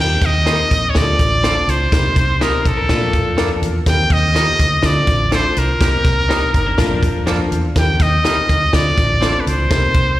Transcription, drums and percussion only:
0.21 kick, snare, closed hi-hat
0.46 snare, closed hi-hat
0.71 kick, closed hi-hat
0.95 kick, snare, closed hi-hat
1.19 kick, closed hi-hat
1.44 snare, closed hi-hat
1.69 closed hi-hat
1.92 kick, snare, closed hi-hat
2.16 kick, snare, closed hi-hat
2.41 snare, closed hi-hat
2.65 kick, closed hi-hat
2.89 kick, snare, closed hi-hat
3.13 kick, closed hi-hat
3.38 snare, closed hi-hat
3.63 closed hi-hat
3.86 kick, snare, closed hi-hat
4.10 kick, snare, closed hi-hat
4.36 snare, closed hi-hat
4.59 kick, closed hi-hat
4.83 kick, snare, closed hi-hat
5.07 kick, closed hi-hat
5.32 snare, closed hi-hat
5.57 closed hi-hat
5.81 kick, snare, closed hi-hat
6.04 kick, snare, closed hi-hat
6.30 snare, closed hi-hat
6.54 kick, closed hi-hat
6.78 kick, snare, closed hi-hat
7.03 kick, closed hi-hat
7.27 snare, closed hi-hat
7.52 closed hi-hat
7.76 kick, snare, closed hi-hat
8.00 kick, snare, closed hi-hat
8.25 snare, closed hi-hat
8.49 kick, closed hi-hat
8.73 kick, snare, closed hi-hat
8.98 kick, closed hi-hat
9.22 snare, closed hi-hat
9.47 closed hi-hat
9.71 kick, snare, closed hi-hat
9.94 kick, closed hi-hat

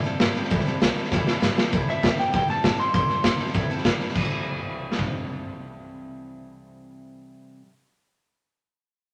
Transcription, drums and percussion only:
0.05 snare
0.20 snare, hi-hat pedal
0.36 snare
0.44 snare
0.51 kick, snare
0.59 snare
0.67 snare
0.82 snare, hi-hat pedal
0.97 snare
1.04 snare
1.12 kick, snare
1.27 snare
1.42 snare, hi-hat pedal
1.58 snare
1.73 kick, snare
1.89 snare
2.03 kick, snare, hi-hat pedal
2.19 snare
2.34 kick, snare
2.50 snare
2.64 kick, snare, hi-hat pedal
2.79 snare
2.94 kick, snare
3.09 snare
3.24 kick, snare, hi-hat pedal
3.39 snare
3.46 snare
3.54 kick, snare
3.70 snare
3.78 snare
3.85 kick, snare, hi-hat pedal
4.00 snare
4.08 snare
4.16 kick, crash
4.92 snare
4.99 kick

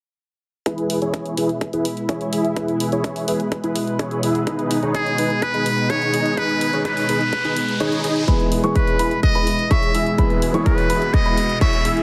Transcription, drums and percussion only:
0.66 kick, closed hi-hat
0.78 closed hi-hat
0.90 open hi-hat
1.02 closed hi-hat
1.14 kick, closed hi-hat
1.26 closed hi-hat
1.37 open hi-hat
1.49 closed hi-hat
1.61 kick, closed hi-hat
1.73 closed hi-hat
1.85 open hi-hat
1.97 closed hi-hat
2.09 kick, closed hi-hat
2.21 closed hi-hat
2.33 open hi-hat
2.45 closed hi-hat
2.56 kick, closed hi-hat
2.68 closed hi-hat
2.80 open hi-hat
2.92 closed hi-hat
3.04 kick, closed hi-hat
3.16 open hi-hat
3.28 open hi-hat
3.40 closed hi-hat
3.52 kick, closed hi-hat
3.64 closed hi-hat
3.76 open hi-hat
3.87 closed hi-hat
3.99 kick, closed hi-hat
4.11 closed hi-hat
4.23 open hi-hat
4.35 closed hi-hat
4.47 kick, closed hi-hat
4.59 closed hi-hat
4.71 open hi-hat
4.83 closed hi-hat
4.95 kick, closed hi-hat
5.06 closed hi-hat
5.18 open hi-hat
5.30 closed hi-hat
5.42 kick, closed hi-hat
5.54 closed hi-hat
5.66 open hi-hat
5.78 closed hi-hat
5.90 kick, closed hi-hat
6.02 closed hi-hat
6.14 open hi-hat
6.26 closed hi-hat
6.37 kick, closed hi-hat
6.49 closed hi-hat
6.61 open hi-hat
6.73 closed hi-hat
6.85 kick, closed hi-hat
6.97 open hi-hat
7.09 open hi-hat
7.33 kick, closed hi-hat
7.45 closed hi-hat
7.57 open hi-hat
7.68 closed hi-hat
7.80 closed hi-hat
7.92 closed hi-hat
8.04 open hi-hat
8.16 closed hi-hat
8.28 kick, closed hi-hat
8.40 closed hi-hat
8.52 open hi-hat
8.64 closed hi-hat
8.76 kick, closed hi-hat
8.87 closed hi-hat
8.99 open hi-hat
9.11 closed hi-hat
9.23 kick, closed hi-hat
9.35 closed hi-hat
9.47 open hi-hat
9.59 closed hi-hat
9.71 kick, closed hi-hat
9.83 closed hi-hat
9.95 open hi-hat
10.06 closed hi-hat
10.18 kick, closed hi-hat
10.30 closed hi-hat
10.42 open hi-hat
10.54 closed hi-hat
10.66 kick, closed hi-hat
10.78 open hi-hat
10.90 open hi-hat
11.02 closed hi-hat
11.14 kick, closed hi-hat
11.26 closed hi-hat
11.37 open hi-hat
11.49 closed hi-hat
11.61 kick, closed hi-hat
11.73 closed hi-hat
11.85 open hi-hat
11.97 closed hi-hat

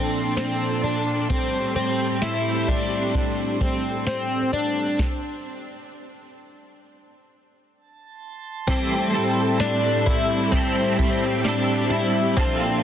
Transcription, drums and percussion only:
0.37 snare, closed hi-hat
1.30 kick, closed hi-hat
2.22 snare, closed hi-hat
2.68 kick
3.15 kick, closed hi-hat
3.61 kick
4.07 snare, closed hi-hat
4.99 kick, snare
8.68 kick, closed hi-hat, crash
9.60 snare, closed hi-hat, tambourine
10.07 kick
10.53 kick, closed hi-hat
10.99 kick
11.45 snare, closed hi-hat, tambourine
12.37 kick, closed hi-hat

